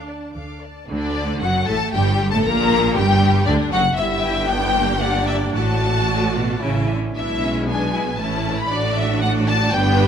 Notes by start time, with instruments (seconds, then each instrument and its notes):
Already playing: double bass section D2, cello section D3, viola section D4
0.06 violin section D5 A5
0.33 double bass section D2, cello section D3, violin section A4 F5 D6
0.61 violin section D5 A5
0.88 double bass section D2, cello section D2, viola section D3, violin section D4 D5
1.41 double bass section F#1, cello section F#2, viola section F#3, violin section F#4 F#5
1.66 double bass section A1, cello section A2, viola section A3, violin section A4 A5
1.93 double bass section G1, cello section G2, viola section G3, violin section G4 G5
2.31 cello section A2, viola section A3, violin section A4 A5
2.43 double bass section A#1, cello section A#2, viola section A#3, violin section A#4 A#5
2.96 double bass section G1, cello section G2, viola section G3, violin section G4 G5
3.46 double bass section D2, cello section D2, viola section D3, violin section D4 D5
3.72 double bass section F#1, cello section F#2, viola section F#3, violin section F#4 F#5
3.96 double bass section G1, cello section G2, viola section G3 E4, violin section G4 E5
4.22 violin section G5
4.47 viola section B3 D4, violin section G5
4.73 viola section A#3
4.98 viola section A#3 D4, violin section D5 F#5
5.27 violin section E5
5.53 double bass section A1, cello section A2, viola section A3 F#4, violin section F#4 D5 A5
6.08 cello section A2
6.36 cello section B2
6.62 double bass section A1, cello section C#3, violin section C#4 E5, viola section C#4 E4
6.89 cello section D3
7.16 double bass section B1, cello section B2, viola section G#3 D4, violin section E4 B4 E5
7.42 viola section C#4
7.68 viola section B3, violin section D4 G#5
7.94 violin section E4
8.19 double bass section A1, cello section A2, viola section A3 C#4, violin section E4 A5
8.59 violin section B5
8.71 double bass section A1, cello section A2, viola section A3 D4, violin section F#4 D5
8.97 violin section E5
9.23 violin section D5 F#5
9.48 violin section A5
9.73 double bass section G1, cello section G2, viola section B3 D4, violin section G4 B4 G5